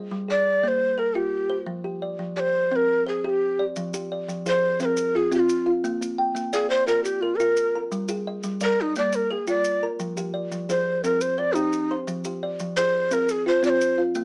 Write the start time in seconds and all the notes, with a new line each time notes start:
Already playing: G#4 D#5
0.11 G3
0.28 G#4 D5
0.63 A#3 D5
0.68 C5
0.98 A#4
1.15 F4 G4
1.50 C5
1.66 F3
1.84 G4
2.02 D5
2.19 F3
2.36 G4 C5 D5
2.71 C4 C5
2.76 A#4
3.07 G#4 C5
3.24 G4 G#4
3.29 G4
3.59 D5
3.76 F3, maracas
3.94 F3 G4, maracas
4.12 D5
4.28 F3, maracas
4.46 F3 G#4 C5, maracas
4.80 F3 C4 C5, maracas
4.85 A#4
4.97 maracas
5.15 F4 G#4
5.32 C4 F4 G4, maracas
5.39 F4
5.49 maracas
5.66 F4 F5
5.84 A#3, maracas
6.01 A#3, maracas
6.18 G5
6.35 A#3, maracas
6.53 A#3 G#4 D5 F5, maracas
6.70 C5
6.87 A#3 F4 A#4, maracas
7.04 G4, maracas
7.21 F4 A#4
7.37 F4 A#4, maracas
7.57 maracas
7.75 A#4 A#5
7.92 G3, maracas
8.08 G4 G#4, maracas
8.27 D#5
8.43 G3, maracas
8.61 G3 A#4 D5, maracas
8.81 D#4
8.95 G3 A#3 D5, maracas
9.13 A#4, maracas
9.31 G#4 A#4
9.47 A#3 F4 D5, maracas
9.64 maracas
9.83 A#4 A#5
9.99 F3, maracas
10.17 F3 G4, maracas
10.34 D5
10.52 F3, maracas
10.69 F3 G#4 C5, maracas
11.04 F3 C4 A#4, maracas
11.21 C5, maracas
11.38 C5 D5
11.54 C4 D#4 G4, maracas
11.73 maracas
11.91 C5 C6
12.07 F3, maracas
12.24 F3 G4, maracas
12.43 D5
12.59 F3, maracas
12.77 F3 G#4 C5, maracas
13.11 F3 C4 A#4, maracas
13.29 G#4, maracas
13.46 F4 C5
13.63 C4 F4 D5, maracas
13.69 C5
13.81 maracas
13.98 F4 F5
14.15 A#3, maracas